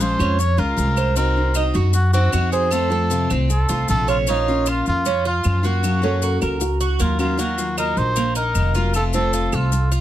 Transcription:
Already playing: A#1 G#4
0.00 F3 G#3 C#4 F4 C5, maracas
0.19 F2 G#3 C#4 F4, claves, maracas
0.39 C#5, muted steel-string acoustic guitar stroke, maracas
0.57 C#2 G#3 C#4 F4 A#4
0.77 C2 F3 G#3 C#4 F4, maracas
0.97 C5, claves, maracas
1.15 C4 D#4 F#4 A#4, maracas
1.36 D#4 F#4
1.54 C4 D#4 F#4, claves, maracas
1.74 F#2 D#4 F#4, maracas
1.93 F#4, muted steel-string acoustic guitar stroke, maracas
2.13 C4 D#4 F#4, maracas
2.32 F2 C4 D#4 F#4, claves, maracas
2.52 G#4 C5, maracas
2.71 C3 F3 A3 C4 F4 A4, claves, maracas
2.90 A3 C4 F4 A4
3.10 C3 F3 A3 C4 F4, maracas
3.30 C2 A3 C4 F4, claves, maracas
3.50 A4, muted steel-string acoustic guitar stroke, maracas
3.69 C2 A3 C4 F4, maracas
3.88 A#1 C3 F3 A3 C4 F4 A4, maracas
4.08 F4 C#5, claves, maracas
4.27 F3 A#3 C#4 D#4 F4, maracas
4.48 A#3 C#4 F4
4.66 F4, claves, maracas
4.86 F2 F4, maracas
5.05 C#4, muted steel-string acoustic guitar stroke, maracas
5.25 F4
5.44 F#2 F3 A#3 C#4 F4, claves, maracas
5.63 A#3 C#4 F4 F#4, maracas
5.83 C#3 F#3 A#3 C#4 F#4, claves, maracas
6.02 F#3 A#3 C#4 F#4 A4
6.22 F#4 A#4, maracas
6.41 C#2 F#4 A#4, claves, maracas
6.60 F#4, muted steel-string acoustic guitar stroke, maracas
6.81 F#4, maracas
6.99 D#2 F#3 A#3 C#4 F4 F#4, maracas
7.19 F#3 A#3 C#4 F4 F#4, claves, maracas
7.37 D#3 F#3 A#3 F4 F#4, maracas
7.58 F#3 A#3 F4, maracas
7.78 D#4 A#4, claves, maracas
7.97 A#1 C5, maracas
8.16 A#3, muted steel-string acoustic guitar stroke, maracas
8.35 D#4 A#4, maracas
8.55 F1 D#3 F#3 A#3 F4, claves, maracas
8.74 F#3 A#3 F4, maracas
8.94 C3 F3 A3 C4 F4 A4, claves, maracas
9.13 F3 A3 C4 F4 A4, maracas
9.33 F4, maracas
9.52 C2 F4 A4, claves, maracas
9.72 muted steel-string acoustic guitar stroke, maracas
9.92 F4, maracas

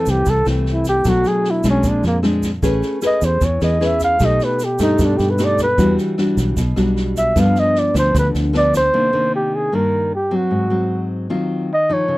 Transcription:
Already playing: F2 E3 A3 C4 A4
0.06 C2 G4, kick, snare, shaker
0.26 C2 C3, kick, snare, shaker
0.30 A4
0.45 C2 E3 A3 C4, cross-stick, snare, shaker
0.66 snare
0.71 E4
0.85 G4, kick, snare, shaker
1.04 B1 B2 F#3 A3 D4, kick, cross-stick, snare, shaker
1.09 F#4
1.24 G#4, snare, shaker
1.44 snare
1.50 E4
1.64 B1 G#3 C4 D4, kick, cross-stick, snare, shaker
1.69 C#4
1.83 A#1 A#2, kick, snare, shaker
1.89 D4
2.03 F2 A#3, snare, shaker
2.23 G#3 C4 D4, cross-stick, snare
2.43 kick, snare, shaker
2.62 A1 A3 C#4 G#4 B4, kick, snare, shaker
2.82 snare, shaker
3.02 C#4 G#4 B4, cross-stick, snare, shaker
3.07 D#5
3.22 E2 C5, kick, snare, shaker
3.41 E2 E3 C#5, kick, snare, shaker
3.61 E2 C#4 G#4 B4 D#5, cross-stick, snare, shaker
3.81 C#4 G#4 B4, snare
3.86 E5
4.00 kick, snare, shaker
4.04 F5
4.20 B1 B2 A3 D#4 G4, kick, cross-stick, snare, shaker
4.25 D#5
4.40 snare, shaker
4.44 B4
4.59 snare, shaker
4.64 G4
4.79 G2 A3 D#4 G4, kick, cross-stick, snare, shaker
4.83 D#4
4.99 G2 B2, kick, snare, shaker
5.05 D4
5.17 G2 G4, snare, shaker
5.30 B4
5.38 A3 D#4 G4, cross-stick, snare, shaker
5.44 D5
5.58 kick, snare, shaker
5.63 B4
5.78 E2 E3 G3 D4 F#4, kick, snare, shaker
5.98 snare, shaker
6.18 G3 D4 F#4, cross-stick, snare
6.37 B1, kick, snare, shaker
6.57 B1 B2, kick, snare, shaker
6.76 B1 G3 D4 F#4, cross-stick, snare, shaker
6.96 snare
7.16 E5, kick, snare, shaker
7.36 G2 F3 B3 D4, kick, cross-stick, snare, shaker
7.40 F5
7.55 D#5, snare, shaker
7.75 D5, snare
7.94 D2 F3 B3 D4, kick, cross-stick, snare, shaker
7.98 C5
8.15 D2 D3, kick, snare, shaker
8.19 B4
8.34 D2, snare, shaker
8.53 F3 B3 D4 D5, cross-stick, snare
8.74 C5, kick, snare, shaker
8.93 C3 D#3 A#3 D4
9.13 D#3 A#3 D4
9.35 G4
9.55 G#4
9.72 G2 D#3 A#3 D4 A#4
10.15 G4
10.31 F#3 C4
10.36 F#4
10.51 G#2
10.70 F#3 C4
11.30 D#3 F#3 C4 F4
11.74 D#5
11.89 F3 D#4 C#5
12.08 C#3

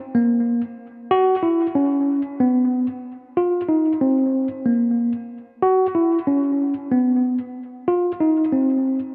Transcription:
0.15 A#3
1.11 F#4
1.43 E4
1.75 C#4
2.40 B3
3.37 F4
3.69 D#4
4.01 C4
4.66 A#3
5.62 F#4
5.95 E4
6.27 C#4
6.92 B3
7.88 F4
8.20 D#4
8.52 C4

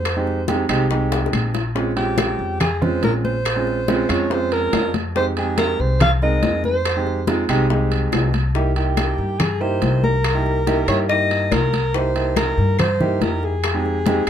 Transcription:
Already playing: F2 C5
0.05 high bongo, high conga, high timbale, claves
0.17 G#3 C4 D#4 G4
0.27 high bongo, high conga
0.48 G#3 C4 D#4 G4, high bongo, high conga, high timbale
0.69 C2 G#3 C4 D#4 G4, high conga, high timbale, claves
0.90 G#3 C4 D#4 G4, high bongo, high conga
1.12 high bongo, high conga, high timbale
1.26 high bongo
1.33 A#1, high conga, high timbale, claves
1.54 low bongo, high timbale
1.75 G#3 C4 C#4 F4, high bongo, high conga
1.96 G#3 C4 C#4 F4 G4, high bongo, high conga, high timbale
2.18 high bongo, high conga, high timbale, claves
2.39 F2
2.60 G#4, high bongo, high conga, low conga, high timbale, claves
2.81 G#3 C4 C#4 F4 C5, high bongo, high conga, low conga
3.03 A#1 A#4, high bongo, low bongo, high conga, high timbale
3.25 C5, high bongo, high conga
3.45 high bongo, high conga, high timbale, claves
3.56 G#3 C4 C#4 F4
3.67 high bongo, high conga
3.88 G#3 C4 C#4 F4, high bongo, high conga, high timbale
4.09 F2 G#3 C4 C#4 F4 C#5, high conga, high timbale, claves
4.30 G#3 C4 C#4 F4 C5, high bongo, high conga
4.52 A#4, high bongo, high conga, high timbale
4.73 F2, high bongo, low bongo, high conga, high timbale, low timbale, claves
4.94 high bongo, high conga, high timbale
5.15 G#3 C4 D#4 G4 C5, high bongo, high conga
5.37 G#3 C4 D#4 G4 G#4, high bongo, high conga, high timbale
5.58 A#4, high bongo, high conga, high timbale, claves
5.79 C2 C5
6.00 F5, high bongo, high conga, low conga, high timbale, claves
6.22 G#3 C4 D#4 A#4 D#5, high bongo, high conga
6.43 F2, high bongo, low bongo, high conga, high timbale
6.64 C5, high bongo, high conga
6.85 high bongo, high conga, high timbale, claves
6.96 G#3 C4 D#4 G4
7.06 high bongo, high conga
7.27 G#3 C4 D#4 F4, high bongo, high conga, high timbale
7.49 C2 G#3 C4 D#4 G4, high conga, high timbale, claves
7.70 G#3 C4 D#4 G4, high bongo, high conga
7.91 high bongo, high conga, high timbale
8.12 C2, high bongo, low bongo, high conga, high timbale, low timbale, claves
8.34 high bongo, high conga, high timbale
8.55 A#3 D#4 E4 G4, high bongo, high conga
8.76 A#3 D#4 E4 G4, high bongo, high conga, high timbale
8.97 high bongo, high conga, high timbale, claves
9.18 G2
9.39 G#4, high bongo, high conga, low conga, high timbale, claves
9.61 A#3 D#4 E4 G4 C5, high bongo, high conga
9.82 C2, high bongo, low bongo, high conga, high timbale
10.03 A#4, high bongo, high conga
10.24 high bongo, high conga, high timbale, claves
10.35 A#3 D#4 E4 G4
10.46 high bongo, high conga
10.67 A#3 D#4 E4 G4, high bongo, high conga, high timbale
10.88 G2 A#3 D#4 E4 G4 C#5, high conga, high timbale, claves
11.09 A#3 D#4 E4 G4 D#5, high bongo, high conga
11.31 high bongo, high conga, high timbale
11.51 C2 A#4, high bongo, low bongo, high conga, high timbale, claves
11.73 high bongo, high conga, high timbale
11.94 A#3 D#4 E4 G4 C5, high bongo, high conga
12.15 A#3 D#4 E4 G4, high bongo, high conga, high timbale
12.36 A#4, high bongo, high conga, high timbale, claves
12.58 G2
12.79 C5, high bongo, high conga, low conga, high timbale, claves
13.00 A#3 D#4 E4 G4, high bongo, high conga, low conga
13.21 F2 A#4, high bongo, low bongo, high conga, high timbale
13.43 G#4, high bongo
13.64 high bongo, high conga, high timbale, claves
13.74 G#3 C4 D#4 G4
13.85 high bongo, high conga
14.06 G#3 C4 D#4 G4, high bongo, high conga, high timbale

